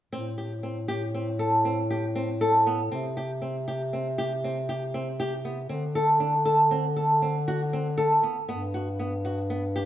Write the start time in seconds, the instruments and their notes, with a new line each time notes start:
0.12 bass clarinet A2, nylon-string guitar C4
0.38 nylon-string guitar G4
0.63 nylon-string guitar C4
0.88 nylon-string guitar G4
1.15 nylon-string guitar C4
1.39 nylon-string guitar A4
1.65 nylon-string guitar C4
1.91 nylon-string guitar G4
2.16 nylon-string guitar C4
2.41 nylon-string guitar A4
2.67 nylon-string guitar B3
2.91 bass clarinet C3, nylon-string guitar C4
3.17 nylon-string guitar G4
3.42 nylon-string guitar C4
3.68 nylon-string guitar G4
3.93 nylon-string guitar C4
4.18 nylon-string guitar G4
4.44 nylon-string guitar C4
4.69 nylon-string guitar G4
4.94 nylon-string guitar C4
5.20 nylon-string guitar G4
5.45 nylon-string guitar B3
5.69 bass clarinet D3, nylon-string guitar C4
5.95 nylon-string guitar A4
6.20 nylon-string guitar D4
6.45 nylon-string guitar A4
6.71 nylon-string guitar C4
6.96 nylon-string guitar A4
7.22 nylon-string guitar C4
7.48 nylon-string guitar F#4
7.73 nylon-string guitar C4
7.98 nylon-string guitar A4
8.23 nylon-string guitar B3
8.48 bass clarinet G2, nylon-string guitar B3
8.74 nylon-string guitar F#4
8.99 nylon-string guitar B3
9.25 nylon-string guitar F#4
9.50 nylon-string guitar B3
9.76 nylon-string guitar G4